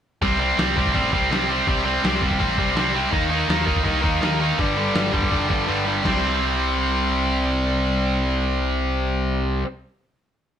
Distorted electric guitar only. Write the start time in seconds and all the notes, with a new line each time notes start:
0.22 C3 G3 C4
0.39 C3 G3 C4
0.58 C3 G3 C4
0.76 C3 G3 C4
0.94 C3 G3 C4
1.12 C3 G3 C4
1.30 C3 G3 C4
1.49 C3 G3 C4
1.67 C3 G3 C4
1.84 C3 G3 C4
2.04 C3 G3 C4
2.22 C3 G3 C4
2.39 C3 G3 C4
2.58 C3 G3 C4
2.76 C3 G3 C4
2.95 C3 G3 C4
3.11 D#3 A#3 D#4
3.29 D#3 A#3 D#4
3.49 D#3 A#3 D#4
3.66 D#3 A#3 D#4
3.84 D#3 A#3 D#4
4.02 D#3 A#3 D#4
4.21 D#3 A#3 D#4
4.40 D#3 A#3 D#4
4.58 G2 D3 G3
4.77 G2 D3 G3
4.94 G2 D3 G3
5.12 G2 D3 G3
5.31 G2 D3 G3
5.48 G2 D3 G3
5.67 G2 D3 G3
5.85 G2 D3 G3
6.03 C3 G3 C4